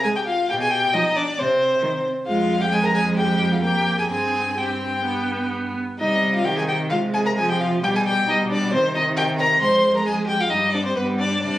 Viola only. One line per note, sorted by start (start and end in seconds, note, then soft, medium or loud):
0.04 0.12 G#3 medium
0.94 1.02 F3 medium
1.82 1.90 D#3 medium
2.26 2.68 G#3 medium
2.71 3.61 G#3 medium
3.62 4.08 A#3 medium
4.09 4.56 C4 medium
4.57 5.04 C4 soft
5.05 5.77 B3 medium
6.00 6.47 G3 medium
6.46 6.93 D#3 medium
6.92 7.40 G#3 medium
7.38 7.83 F3 medium
7.83 8.27 G3 medium
8.29 8.74 G3 medium
8.73 9.61 D#3 medium
9.61 10.49 G#3 medium
10.50 10.95 G3 medium
10.96 11.42 G3 medium
11.42 11.58 G3 medium